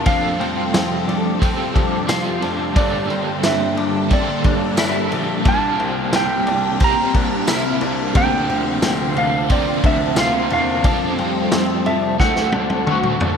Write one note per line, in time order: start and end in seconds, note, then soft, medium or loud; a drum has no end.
0.00 2.73 C3 medium
0.00 2.73 C4 medium
0.05 0.36 F2 loud
0.05 1.40 F3 medium
0.05 8.11 G3 medium
0.05 1.39 G3 medium
0.05 2.73 A3 medium
0.05 1.40 C4 medium
0.05 0.39 D4 medium
0.05 5.41 G4 medium
0.05 2.05 F5 loud
0.05 kick loud
0.05 ride medium
0.10 1.42 F4 medium
0.10 1.43 A4 loud
0.39 0.70 F2 loud
0.39 0.71 C4 medium
0.39 ride soft
0.73 1.04 F2 loud
0.73 1.07 C4 medium
0.73 snare loud
0.73 ride medium
0.73 tambourine medium
1.07 1.52 F2 medium
1.07 1.40 D4 medium
1.07 ride soft
1.39 2.07 G3 medium
1.39 1.74 C4 medium
1.39 2.07 C4 medium
1.39 2.09 F4 medium
1.39 kick loud
1.39 ride medium
1.44 2.10 A4 medium
1.74 2.05 F2 loud
1.74 2.08 D4 medium
1.74 kick loud
1.74 ride soft
2.07 2.39 F2 loud
2.07 2.76 G3 medium
2.07 2.76 C4 medium
2.07 2.42 F4 medium
2.07 2.77 F4 medium
2.07 2.77 A4 medium
2.07 snare loud
2.07 ride medium
2.07 tambourine medium
2.42 2.73 F1 medium
2.42 2.74 D4 medium
2.42 ride soft
2.74 3.06 G1 loud
2.74 4.10 G2 medium
2.74 5.43 D3 medium
2.74 4.11 D3 medium
2.74 4.09 G3 medium
2.74 10.80 A#3 medium
2.74 4.11 A#3 medium
2.74 3.09 D4 loud
2.74 5.43 A4 medium
2.74 3.46 D5 medium
2.74 kick loud
2.74 ride medium
2.79 4.11 D4 loud
2.79 4.12 A4 medium
3.10 3.40 G1 medium
3.10 3.42 C4 medium
3.10 ride soft
3.43 3.74 G1 loud
3.43 3.76 C4 medium
3.43 5.01 D4 medium
3.43 4.08 E5 medium
3.43 snare loud
3.43 ride medium
3.43 tambourine medium
3.77 4.22 G1 medium
3.77 4.10 D4 medium
3.77 ride soft
4.10 4.76 G3 medium
4.10 4.78 A#3 medium
4.10 4.44 C4 medium
4.10 4.78 D4 medium
4.10 4.79 A4 medium
4.10 5.51 D5 medium
4.10 kick medium
4.10 ride medium
4.44 4.75 G1 loud
4.44 4.78 D4 medium
4.44 kick loud
4.44 ride soft
4.77 5.08 G1 loud
4.77 5.45 G3 medium
4.77 5.46 A#3 medium
4.77 5.46 D4 medium
4.77 5.12 E4 medium
4.77 snare loud
4.77 ride medium
4.77 tambourine medium
4.81 5.47 A4 medium
5.11 5.42 A#1 loud
5.11 5.43 D4 medium
5.11 ride soft
5.43 5.75 C2 loud
5.43 6.79 C3 medium
5.43 12.16 C3 medium
5.43 6.79 G3 medium
5.43 6.81 A#3 medium
5.43 5.78 D4 loud
5.43 8.13 G4 medium
5.43 kick loud
5.43 ride medium
5.48 13.37 C4 medium
5.48 6.83 F4 medium
5.48 6.85 A#4 medium
5.48 6.15 A5 loud
5.79 6.09 C2 loud
5.79 6.11 C4 medium
5.79 ride soft
6.12 6.43 C2 loud
6.12 6.45 C4 medium
6.12 6.84 G5 loud
6.12 snare loud
6.12 ride medium
6.12 tambourine medium
6.46 6.92 C2 loud
6.46 6.79 D4 medium
6.46 ride soft
6.80 7.46 G3 medium
6.80 7.48 A#3 medium
6.80 7.13 C4 loud
6.80 7.49 F4 medium
6.80 kick loud
6.80 ride medium
6.84 7.50 A#4 medium
6.84 7.79 A#5 loud
7.14 7.44 C2 loud
7.14 7.48 D4 medium
7.14 kick loud
7.14 ride medium
7.47 7.78 C2 medium
7.47 8.15 G3 medium
7.47 8.16 A#3 medium
7.47 7.81 E4 medium
7.47 8.18 F4 medium
7.47 8.19 A#4 medium
7.47 snare loud
7.47 ride medium
7.47 tambourine medium
7.81 8.11 C2 loud
7.81 8.14 D4 medium
7.81 ride soft
8.13 8.45 D2 loud
8.13 9.49 D3 medium
8.13 10.81 D3 medium
8.13 9.48 F3 medium
8.13 9.50 C4 medium
8.13 8.49 D4 loud
8.13 10.81 F4 medium
8.13 9.71 G4 medium
8.13 8.79 G5 loud
8.13 kick loud
8.13 ride medium
8.18 9.51 D4 loud
8.18 9.51 A#4 medium
8.49 8.79 D2 loud
8.49 8.81 C4 medium
8.49 ride soft
8.82 9.13 D2 loud
8.82 9.16 C4 medium
8.82 snare loud
8.82 ride medium
8.82 tambourine medium
9.16 9.61 D2 loud
9.16 9.49 D4 medium
9.16 9.49 F5 loud
9.16 ride soft
9.49 10.83 F3 medium
9.49 9.83 C4 medium
9.49 10.17 C4 medium
9.49 10.18 D4 medium
9.49 10.19 A#4 medium
9.49 9.86 D5 medium
9.49 kick medium
9.49 ride medium
9.83 10.14 D2 loud
9.83 10.17 D4 medium
9.83 10.20 E5 loud
9.83 kick loud
9.83 ride soft
10.16 10.47 D2 loud
10.16 10.86 C4 medium
10.16 10.86 D4 medium
10.16 10.51 F4 medium
10.16 10.52 F5 loud
10.16 snare loud
10.16 ride medium
10.16 tambourine medium
10.21 10.87 A#4 medium
10.50 10.81 E2 loud
10.50 10.82 D4 medium
10.50 11.86 F5 loud
10.50 ride soft
10.83 11.15 F2 loud
10.83 12.19 F3 medium
10.83 12.18 G3 medium
10.83 13.37 A3 medium
10.83 12.20 C4 loud
10.83 11.17 D4 loud
10.83 12.18 G4 medium
10.83 12.42 C5 medium
10.83 kick loud
10.83 ride medium
10.88 12.21 F4 loud
10.88 12.23 A4 loud
11.17 11.49 F2 loud
11.17 11.50 C4 medium
11.17 ride soft
11.52 11.82 F2 loud
11.52 11.85 C4 medium
11.52 snare loud
11.52 ride medium
11.52 tambourine medium
11.86 12.16 F2 loud
11.86 12.19 D4 medium
11.86 12.19 E5 loud
11.86 ride soft
12.19 12.50 D2 loud
12.19 13.37 D3 medium
12.19 13.37 F#3 medium
12.19 12.86 A3 medium
12.19 12.53 C4 medium
12.19 12.89 C4 medium
12.19 13.37 F#4 medium
12.19 12.88 F#4 medium
12.19 13.17 F#5 loud
12.19 kick medium
12.19 snare medium
12.23 12.91 A4 medium
12.36 snare medium
12.52 12.84 D2 loud
12.52 12.87 D4 medium
12.52 high tom medium
12.70 high tom medium
12.86 13.18 D2 loud
12.86 13.37 A3 medium
12.86 13.37 C4 medium
12.86 13.21 F#4 medium
12.86 13.37 F#4 medium
12.86 mid tom medium
12.91 13.37 A4 medium
13.03 mid tom medium
13.20 13.37 C2 medium
13.20 13.37 D4 medium
13.20 floor tom loud